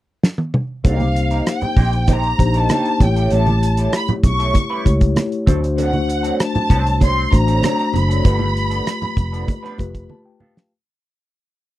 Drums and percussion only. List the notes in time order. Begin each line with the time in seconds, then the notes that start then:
0.23 snare
0.38 high tom
0.54 mid tom
0.85 kick, closed hi-hat, muted conga
1.00 closed hi-hat, high conga
1.15 closed hi-hat, muted conga
1.31 closed hi-hat
1.46 cross-stick, closed hi-hat, muted conga
1.61 closed hi-hat, low conga
1.77 kick, open hi-hat, muted conga, low conga
1.93 closed hi-hat
2.07 kick, closed hi-hat, muted conga, high conga
2.23 closed hi-hat
2.39 kick, closed hi-hat, high conga
2.54 closed hi-hat
2.69 cross-stick, closed hi-hat, high conga
2.85 closed hi-hat
3.00 kick, closed hi-hat, high conga, low conga
3.16 closed hi-hat
3.30 closed hi-hat, muted conga
3.46 closed hi-hat, high conga
3.61 closed hi-hat, muted conga
3.77 closed hi-hat
3.93 cross-stick, closed hi-hat
4.08 closed hi-hat, low conga
4.23 kick, closed hi-hat, muted conga, low conga
4.40 closed hi-hat
4.54 kick, closed hi-hat, muted conga, high conga
4.86 kick, closed hi-hat, high conga
5.01 kick, closed hi-hat
5.16 cross-stick, closed hi-hat, muted conga, high conga
5.32 closed hi-hat
5.47 kick, closed hi-hat, muted conga, high conga, low conga
5.64 closed hi-hat
5.78 closed hi-hat, muted conga
5.93 closed hi-hat, high conga
6.09 closed hi-hat
6.24 closed hi-hat
6.40 cross-stick, closed hi-hat
6.55 closed hi-hat, low conga
6.70 kick, cross-stick, closed hi-hat, muted conga, low conga
6.87 closed hi-hat
7.01 kick, closed hi-hat, muted conga, high conga
7.32 kick, closed hi-hat, muted conga, high conga
7.48 closed hi-hat
7.63 cross-stick, closed hi-hat, muted conga, high conga
7.79 closed hi-hat
7.94 closed hi-hat, muted conga, high conga, low conga
8.11 closed hi-hat
8.25 kick, closed hi-hat, muted conga
8.39 high conga
8.57 closed hi-hat
8.71 closed hi-hat
8.86 cross-stick, closed hi-hat, muted conga
9.02 closed hi-hat, low conga
9.17 kick, closed hi-hat, muted conga, low conga
9.34 closed hi-hat
9.48 kick, closed hi-hat, high conga
9.65 cross-stick
9.78 kick, closed hi-hat, muted conga, high conga
9.95 kick, closed hi-hat
10.10 muted conga, high conga
10.40 muted conga, high conga, low conga
10.57 snare